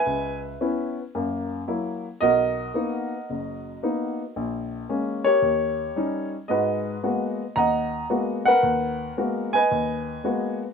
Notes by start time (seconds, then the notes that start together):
Already playing: B4 E5 G#5
0.06 C#2
0.61 B3 C#4 E4
1.15 F#2 A#3
1.68 F#3 A#3 E4
2.21 B1 F#4 A#4 D#5
2.74 A#3 B3 D#4
3.30 F#1
3.83 A#3 B3 D#4
4.36 A#1
4.89 G#3 A#3 C#4
5.24 G4 A#4 C#5
5.42 D#2
5.96 G3 C#4 D#4
6.48 G#2 G#3 F#4 B4 D#5
7.03 G#3 A#3 B3 F#4
7.56 D#2 D#5 F#5 A#5
8.10 G#3 A#3 B3 F#4
8.45 A#4 B4 F#5
8.63 D#2
9.17 G#3 A#3 B3 F#4
9.53 B4 D#5 G#5
9.72 D#2
10.24 G#3 A#3 B3 F#4